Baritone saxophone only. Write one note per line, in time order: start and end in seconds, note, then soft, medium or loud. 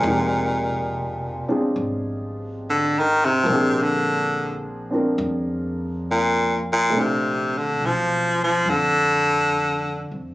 0.00 1.80 A#2 medium
2.70 3.01 D3 medium
2.99 3.27 D#3 loud
3.25 3.85 C3 loud
3.83 4.66 D3 medium
6.11 6.64 A#2 medium
6.73 7.02 A#2 medium
7.00 7.59 C3 medium
7.58 7.87 D3 medium
7.86 8.42 F3 medium
8.44 8.71 F3 medium
8.70 10.24 D3 loud